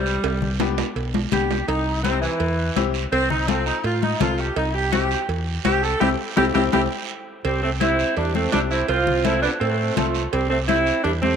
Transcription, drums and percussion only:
0.06 short guiro
0.24 cowbell, high timbale, long guiro
0.42 low conga
0.60 cowbell, high conga, low timbale, short guiro
0.78 low timbale, short guiro
0.96 cowbell, long guiro
1.14 high conga, low timbale
1.32 cowbell, high conga, low conga, short guiro
1.51 low timbale, short guiro
1.68 cowbell, long guiro
2.04 cowbell, high conga, short guiro
2.23 short guiro
2.40 cowbell, long guiro
2.76 cowbell, high conga, low timbale, short guiro
2.94 short guiro
3.12 cowbell, long guiro
3.30 low conga
3.48 cowbell, high conga, short guiro
3.66 short guiro
3.84 cowbell, long guiro
4.03 high conga
4.20 cowbell, high conga, low conga, low timbale, short guiro
4.38 short guiro
4.56 cowbell, long guiro
4.92 cowbell, high conga, short guiro
5.11 short guiro
5.29 cowbell, long guiro
5.65 cowbell, high conga, low timbale, short guiro
5.83 short guiro
6.01 high conga, high timbale, long guiro
6.37 high conga, high timbale
6.55 high conga, high timbale, long guiro
6.73 high conga, high timbale, long guiro
7.45 cowbell, long guiro
7.81 cowbell, high conga, short guiro
7.99 short guiro
8.17 cowbell, long guiro
8.35 high conga
8.52 cowbell, high conga, low timbale, short guiro
8.71 short guiro
8.88 cowbell, long guiro
9.07 low conga
9.25 cowbell, high conga, short guiro
9.43 short guiro
9.61 cowbell, long guiro
9.97 cowbell, high conga, low conga, low timbale, short guiro
10.14 short guiro
10.33 cowbell, long guiro
10.69 cowbell, high conga, short guiro
10.87 short guiro
11.04 cowbell, long guiro
11.23 high conga

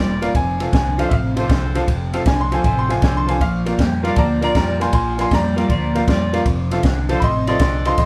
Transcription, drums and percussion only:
0.22 snare, ride
0.35 kick, ride
0.60 snare, ride
0.73 kick, snare, ride
0.99 snare, ride
1.11 kick, ride
1.37 snare, ride
1.49 kick, snare, ride
1.75 snare, ride
1.88 kick, ride
2.13 snare, ride
2.26 kick, snare, ride
2.52 snare, ride
2.64 kick, ride
2.90 snare, ride
3.02 kick, snare, ride
3.29 snare, ride
3.41 kick, snare, ride
3.66 snare, ride
3.79 kick, snare, ride
4.05 snare, ride
4.16 kick, snare, ride
4.42 snare, ride
4.55 kick, snare, ride
4.81 snare, ride
4.93 kick, ride
5.19 snare, ride
5.31 kick, snare, ride
5.58 snare, ride
5.70 kick, ride
5.95 snare, ride
6.08 kick, snare, ride
6.34 snare, ride
6.46 kick, ride
6.71 snare, ride
6.83 kick, snare, ride
7.09 snare, ride
7.22 kick, ride
7.47 snare, ride
7.59 kick, snare, ride
7.85 snare, ride
7.98 kick, snare, ride

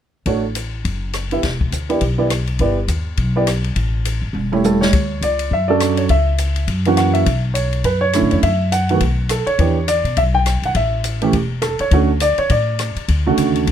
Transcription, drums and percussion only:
0.26 kick, ride
0.55 hi-hat pedal, ride
0.85 kick, ride
1.13 cross-stick, hi-hat pedal, ride
1.31 ride
1.43 kick, snare, ride
1.61 kick
1.72 hi-hat pedal, ride
1.90 ride
2.01 kick, ride
2.30 cross-stick, hi-hat pedal, ride
2.47 ride
2.59 kick, ride
2.88 hi-hat pedal, ride
3.17 kick, ride
3.47 cross-stick, hi-hat pedal, ride
3.64 ride
3.76 kick, ride
4.05 hi-hat pedal, ride
4.34 high tom
4.52 high tom
4.64 hi-hat pedal, high tom
4.82 snare
4.93 kick, ride
5.22 hi-hat pedal, ride
5.39 ride
5.51 kick
5.80 cross-stick, hi-hat pedal, ride
5.97 ride
6.09 kick, ride
6.38 hi-hat pedal, ride
6.56 ride
6.68 kick, ride
6.85 ride
6.97 cross-stick, hi-hat pedal, ride
7.15 ride
7.26 kick, ride
7.55 hi-hat pedal, ride
7.73 ride
7.84 kick, ride
8.13 cross-stick, hi-hat pedal, ride
8.31 ride
8.43 kick, ride
8.72 hi-hat pedal, ride
8.89 ride
9.00 kick, ride
9.29 cross-stick, hi-hat pedal, ride
9.47 ride
9.59 kick, ride
9.88 hi-hat pedal, ride
10.05 ride
10.17 kick, ride
10.46 cross-stick, hi-hat pedal, ride
10.63 ride
10.75 kick, ride
11.04 hi-hat pedal, ride
11.22 ride
11.33 kick, ride
11.62 cross-stick, hi-hat pedal, ride
11.79 ride
11.91 kick, ride
12.20 hi-hat pedal, ride
12.38 ride
12.50 kick, ride
12.79 cross-stick, hi-hat pedal, ride
12.96 ride
13.08 kick, ride
13.38 hi-hat pedal, ride
13.56 ride
13.67 kick, ride

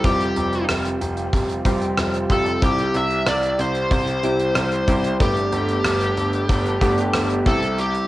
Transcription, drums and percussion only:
0.04 kick, closed hi-hat
0.21 closed hi-hat
0.36 closed hi-hat
0.53 closed hi-hat
0.69 cross-stick, closed hi-hat
0.85 closed hi-hat
1.01 closed hi-hat
1.17 closed hi-hat
1.33 kick, closed hi-hat
1.49 closed hi-hat
1.65 kick, closed hi-hat
1.82 closed hi-hat
1.97 cross-stick, closed hi-hat
2.14 closed hi-hat
2.30 kick, closed hi-hat
2.46 closed hi-hat
2.62 kick, closed hi-hat
2.78 closed hi-hat
2.94 closed hi-hat
3.11 closed hi-hat
3.26 cross-stick, closed hi-hat
3.43 closed hi-hat
3.59 closed hi-hat
3.75 closed hi-hat
3.91 kick, closed hi-hat
4.07 closed hi-hat
4.23 closed hi-hat
4.39 closed hi-hat
4.55 cross-stick, closed hi-hat
4.72 closed hi-hat
4.88 kick, closed hi-hat
5.04 closed hi-hat
5.20 kick, closed hi-hat
5.37 closed hi-hat
5.53 closed hi-hat
5.69 closed hi-hat
5.85 cross-stick, closed hi-hat
6.01 closed hi-hat
6.17 closed hi-hat
6.33 closed hi-hat
6.49 kick, closed hi-hat
6.66 closed hi-hat
6.81 kick, closed hi-hat
6.98 closed hi-hat
7.14 cross-stick, closed hi-hat
7.30 closed hi-hat
7.46 kick, closed hi-hat
7.62 closed hi-hat
7.78 closed hi-hat
7.94 closed hi-hat

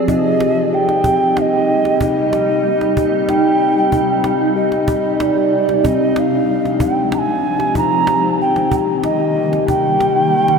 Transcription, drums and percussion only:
0.08 cajon bass
0.25 cajon slap
0.40 cajon slap
0.89 cajon slap
1.04 cajon bass
1.37 cajon slap
1.53 cajon slap
1.85 cajon slap
2.01 cajon bass
2.17 cajon slap
2.33 cajon slap
2.81 cajon slap
2.97 cajon bass
3.13 cajon slap
3.29 cajon slap
3.45 cajon slap
3.92 cajon bass
4.09 cajon slap
4.24 cajon slap
4.72 cajon slap
4.88 cajon bass
5.05 cajon slap
5.20 cajon slap
5.38 cajon slap
5.69 cajon slap
5.85 cajon bass
6.16 cajon slap
6.48 cajon slap
6.65 cajon slap
6.80 cajon bass
7.12 cajon slap
7.29 cajon slap
7.60 cajon slap
7.75 cajon bass
7.92 cajon slap
8.07 cajon slap
8.56 cajon slap
8.71 cajon bass
8.88 cajon slap
9.04 cajon slap
9.20 cajon slap
9.53 cajon slap
9.68 cajon bass
9.85 cajon slap
10.00 cajon slap
10.48 cajon slap

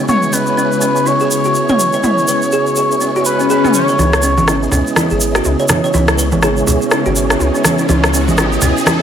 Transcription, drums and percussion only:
0.08 mid tom, shaker
0.22 shaker
0.33 shaker
0.46 shaker
0.58 shaker
0.72 shaker
0.81 shaker
0.96 shaker
1.06 shaker
1.20 shaker
1.31 shaker
1.44 shaker
1.55 shaker
1.69 mid tom, shaker
1.80 shaker
1.93 shaker
2.03 mid tom, shaker
2.18 shaker
2.28 shaker
2.42 shaker
2.52 shaker
2.67 shaker
2.76 shaker
2.91 shaker
3.01 shaker
3.16 shaker
3.25 shaker
3.40 shaker
3.50 shaker
3.64 mid tom, shaker
3.74 shaker
3.88 shaker
3.99 mid tom, high conga, shaker
4.13 cross-stick, shaker
4.22 shaker
4.38 high conga, shaker
4.48 cross-stick, mid tom, shaker
4.63 shaker
4.71 low conga, shaker
4.87 shaker
4.96 cross-stick, mid tom, high conga, shaker
5.10 shaker
5.21 shaker
5.35 cross-stick, shaker
5.44 mid tom, shaker
5.60 shaker
5.68 cross-stick, high conga, low conga, shaker
5.84 shaker
5.94 mid tom, high conga, shaker
6.08 cross-stick, shaker
6.18 shaker
6.32 high conga, shaker
6.42 cross-stick, mid tom, shaker
6.57 shaker
6.67 low conga, shaker
6.82 shaker
6.91 cross-stick, mid tom, shaker
7.06 shaker
7.16 shaker
7.30 cross-stick, shaker
7.40 mid tom, shaker
7.55 shaker
7.64 cross-stick, high conga, shaker
7.78 shaker
7.89 mid tom, high conga, shaker
8.04 cross-stick, shaker
8.14 shaker
8.28 high conga, shaker
8.38 cross-stick, mid tom, shaker
8.52 shaker
8.61 low conga, shaker
8.77 shaker
8.86 cross-stick, mid tom, high conga, shaker

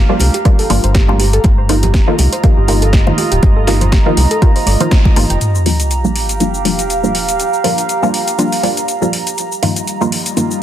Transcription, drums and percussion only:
0.20 open hi-hat, high conga
0.34 closed hi-hat
0.45 kick, closed hi-hat
0.59 open hi-hat
0.70 open hi-hat, high conga
0.84 closed hi-hat
0.95 kick, snare, closed hi-hat
1.09 high conga
1.20 open hi-hat
1.33 closed hi-hat
1.44 kick, closed hi-hat, high conga
1.69 open hi-hat
1.83 closed hi-hat, high conga, low conga
1.94 kick, snare, closed hi-hat
2.18 open hi-hat, high conga
2.33 closed hi-hat
2.44 kick, closed hi-hat
2.68 open hi-hat, high conga
2.82 closed hi-hat
2.93 kick, snare, closed hi-hat
3.07 high conga
3.18 open hi-hat
3.32 closed hi-hat
3.43 kick, closed hi-hat, high conga
3.67 snare, open hi-hat
3.81 closed hi-hat, high conga, low conga
3.92 kick, snare, closed hi-hat
4.17 open hi-hat, high conga
4.31 closed hi-hat
4.42 kick, closed hi-hat
4.56 open hi-hat
4.66 open hi-hat, high conga
4.80 closed hi-hat
4.91 kick, snare, closed hi-hat
5.05 kick, high conga
5.16 open hi-hat
5.30 closed hi-hat
5.41 closed hi-hat, shaker
5.55 shaker
5.66 open hi-hat
5.80 closed hi-hat, shaker
5.91 closed hi-hat, shaker
6.05 shaker
6.16 open hi-hat
6.29 closed hi-hat, shaker
6.40 closed hi-hat, shaker
6.54 shaker
6.65 open hi-hat
6.79 closed hi-hat, shaker
6.90 closed hi-hat, shaker
7.04 shaker
7.15 open hi-hat
7.29 closed hi-hat, shaker
7.40 closed hi-hat, shaker
7.54 shaker
7.64 open hi-hat
7.78 closed hi-hat, shaker
7.89 closed hi-hat, shaker
8.03 shaker
8.14 open hi-hat
8.28 closed hi-hat, shaker
8.39 closed hi-hat, shaker
8.52 open hi-hat, shaker
8.64 open hi-hat
8.77 closed hi-hat, shaker
8.88 closed hi-hat, shaker
9.02 shaker
9.13 open hi-hat
9.27 closed hi-hat, shaker
9.38 closed hi-hat, shaker
9.52 shaker
9.63 open hi-hat
9.76 closed hi-hat, shaker
9.87 closed hi-hat, shaker
10.01 shaker
10.12 open hi-hat
10.26 closed hi-hat, shaker
10.37 closed hi-hat, shaker
10.51 shaker

